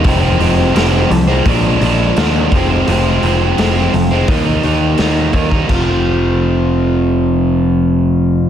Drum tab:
CC |----------------|----------------|x---------------|
HH |o-o-o-o-o-o-o-o-|o-o-o-o-o-o-o-o-|----------------|
SD |----o-------o---|----o-------o---|----------------|
BD |o-------o-----o-|--------o-----oo|o---------------|